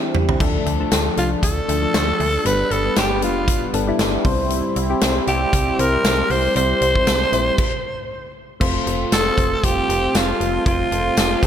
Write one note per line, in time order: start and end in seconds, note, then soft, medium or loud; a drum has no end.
0.00 0.43 E3 medium
0.00 0.38 G3 medium
0.00 0.42 G3 medium
0.00 0.38 C4 medium
0.00 0.42 C4 medium
0.00 0.41 D4 medium
0.00 0.38 E4 medium
0.00 0.43 G4 medium
0.15 mid tom medium
0.29 floor tom medium
0.40 0.59 D2 loud
0.40 0.64 F3 medium
0.40 2.43 F3 medium
0.40 2.43 A3 medium
0.40 0.64 A3 medium
0.40 4.21 D4 medium
0.40 0.64 D4 medium
0.40 0.64 A4 medium
0.40 kick loud
0.40 crash medium
0.66 0.85 D2 medium
0.66 closed hi-hat medium
0.80 1.03 F3 medium
0.80 1.03 A3 medium
0.80 1.03 D4 medium
0.80 1.03 A4 medium
0.91 1.10 D2 medium
0.91 snare loud
0.91 closed hi-hat medium
0.91 tambourine medium
1.16 1.36 C2 medium
1.16 1.48 F3 medium
1.16 1.49 A3 medium
1.16 1.49 D4 medium
1.16 1.30 F4 medium
1.16 1.49 A4 medium
1.16 closed hi-hat medium
1.43 1.61 D2 medium
1.43 2.48 A4 loud
1.43 kick medium
1.43 closed hi-hat loud
1.68 1.87 D2 medium
1.68 1.77 F3 medium
1.68 1.77 A3 medium
1.68 1.77 D4 medium
1.68 1.77 A4 medium
1.68 closed hi-hat medium
1.81 2.19 F3 medium
1.81 2.20 A3 medium
1.81 2.20 D4 medium
1.81 2.20 A4 medium
1.94 2.13 D2 loud
1.94 snare loud
1.94 closed hi-hat medium
1.94 tambourine medium
2.20 2.38 D2 loud
2.20 open hi-hat medium
2.45 2.64 G1 loud
2.45 2.68 G3 medium
2.45 7.54 G3 medium
2.45 2.69 B3 medium
2.45 4.23 B3 medium
2.45 2.69 D4 medium
2.45 2.69 B4 medium
2.45 2.73 B4 loud
2.45 closed hi-hat medium
2.71 2.89 G1 loud
2.71 2.97 A4 loud
2.71 closed hi-hat medium
2.84 3.08 G3 medium
2.84 3.08 B3 medium
2.84 3.08 D4 medium
2.84 3.08 B4 medium
2.96 3.24 G1 medium
2.96 3.21 G4 medium
2.96 snare loud
2.96 closed hi-hat medium
2.96 tambourine medium
3.22 3.49 F1 medium
3.22 3.54 G3 medium
3.22 3.54 B3 medium
3.22 3.54 D4 medium
3.22 3.71 F4 medium
3.22 3.54 B4 medium
3.22 closed hi-hat medium
3.48 3.66 G1 loud
3.48 kick medium
3.48 closed hi-hat loud
3.73 3.92 G1 medium
3.73 3.82 G3 medium
3.73 3.82 B3 medium
3.73 3.82 D4 medium
3.73 3.83 A4 medium
3.73 closed hi-hat medium
3.87 4.23 G3 medium
3.87 4.25 B3 medium
3.87 4.25 D4 medium
3.87 4.24 E4 loud
3.99 4.18 G1 loud
3.99 snare loud
3.99 closed hi-hat medium
3.99 tambourine medium
4.24 4.62 C2 loud
4.24 4.76 G3 medium
4.24 4.76 C4 medium
4.24 7.55 C4 medium
4.24 4.76 E4 medium
4.24 7.55 E4 medium
4.24 4.77 C5 loud
4.24 kick loud
4.24 open hi-hat medium
4.50 closed hi-hat medium
4.76 4.95 C2 medium
4.76 closed hi-hat medium
4.89 5.13 G3 medium
4.89 5.13 C4 medium
4.89 5.13 E4 medium
4.89 5.13 G4 medium
5.01 5.20 C2 medium
5.01 snare loud
5.01 closed hi-hat medium
5.01 tambourine medium
5.27 5.46 C2 loud
5.27 5.59 G3 medium
5.27 5.59 C4 medium
5.27 5.59 E4 medium
5.27 5.81 G4 loud
5.27 5.59 D5 medium
5.27 closed hi-hat medium
5.53 5.72 C2 loud
5.53 kick medium
5.53 closed hi-hat loud
5.78 5.97 C2 loud
5.78 5.87 G3 medium
5.78 5.87 C4 medium
5.78 5.87 E4 medium
5.78 6.33 A#4 loud
5.78 5.88 C5 medium
5.78 closed hi-hat medium
5.92 6.30 G3 medium
5.92 6.30 C4 medium
5.92 6.30 E4 medium
5.92 6.30 C5 medium
6.04 6.23 C2 loud
6.04 snare loud
6.04 closed hi-hat medium
6.04 tambourine medium
6.30 6.49 C2 loud
6.30 6.56 C5 loud
6.30 open hi-hat medium
6.55 6.74 C2 loud
6.55 6.79 G3 medium
6.55 6.79 C4 medium
6.55 6.79 E4 medium
6.55 6.79 C5 medium
6.55 8.32 C5 loud
6.55 closed hi-hat medium
6.81 7.00 C2 medium
6.81 closed hi-hat medium
6.95 7.18 G3 medium
6.95 7.18 C4 medium
6.95 7.18 E4 medium
6.95 7.19 C5 medium
6.95 kick medium
7.07 7.26 C2 medium
7.07 snare loud
7.07 closed hi-hat medium
7.07 tambourine medium
7.32 7.51 A#1 medium
7.32 7.58 G3 medium
7.32 7.58 C4 medium
7.32 7.58 E4 medium
7.32 7.59 C5 medium
7.32 closed hi-hat medium
7.58 kick loud
7.58 crash medium
8.60 8.79 F1 loud
8.60 9.07 A3 medium
8.60 9.08 C4 medium
8.60 11.47 C4 medium
8.60 11.47 F4 medium
8.60 9.08 F4 medium
8.60 11.47 A4 medium
8.60 9.08 C5 medium
8.60 kick loud
8.60 crash medium
8.87 9.05 F1 medium
8.87 closed hi-hat medium
9.12 9.31 F1 medium
9.12 9.66 A4 loud
9.12 snare loud
9.12 closed hi-hat loud
9.12 tambourine medium
9.37 9.56 F1 loud
9.37 9.54 A3 medium
9.37 9.54 C4 medium
9.37 9.54 F4 medium
9.37 9.55 C5 medium
9.37 kick medium
9.37 closed hi-hat medium
9.63 9.82 F1 loud
9.63 9.70 G3 medium
9.63 10.26 C4 medium
9.63 10.26 F4 medium
9.63 10.18 G4 loud
9.63 10.27 C5 medium
9.63 kick medium
9.63 closed hi-hat loud
9.69 10.29 A3 medium
9.89 10.08 F1 loud
9.89 closed hi-hat medium
10.15 10.33 F1 loud
10.15 10.67 F4 medium
10.15 snare loud
10.15 closed hi-hat medium
10.15 tambourine medium
10.40 10.59 F1 loud
10.40 closed hi-hat medium
10.66 10.85 F1 loud
10.66 11.13 A3 medium
10.66 11.13 C4 medium
10.66 11.13 F4 medium
10.66 11.46 F4 loud
10.66 11.13 C5 medium
10.66 kick loud
10.66 closed hi-hat medium
10.92 11.10 F1 medium
10.92 closed hi-hat medium
11.17 11.36 F1 medium
11.17 snare loud
11.17 closed hi-hat loud
11.17 tambourine medium
11.43 11.47 F1 loud
11.43 11.47 A3 medium
11.43 11.47 C4 medium
11.43 11.47 F4 medium
11.43 11.47 A4 medium
11.43 kick medium
11.43 closed hi-hat medium